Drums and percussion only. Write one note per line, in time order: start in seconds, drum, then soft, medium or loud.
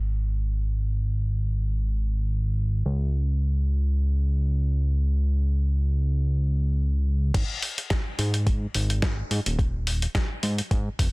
7.34 kick loud
7.34 closed hi-hat medium
7.34 crash loud
7.62 open hi-hat loud
7.78 closed hi-hat medium
7.90 kick loud
7.90 snare loud
7.90 closed hi-hat medium
8.19 open hi-hat loud
8.34 closed hi-hat medium
8.47 kick loud
8.47 closed hi-hat medium
8.74 open hi-hat loud
8.90 closed hi-hat medium
9.02 kick loud
9.02 snare loud
9.02 closed hi-hat medium
9.31 open hi-hat medium
9.46 closed hi-hat medium
9.59 kick loud
9.59 closed hi-hat medium
9.87 open hi-hat loud
10.02 closed hi-hat medium
10.15 kick loud
10.15 snare loud
10.15 closed hi-hat medium
10.43 open hi-hat loud
10.58 closed hi-hat medium
10.71 kick loud
10.71 closed hi-hat medium
10.99 kick medium
10.99 open hi-hat loud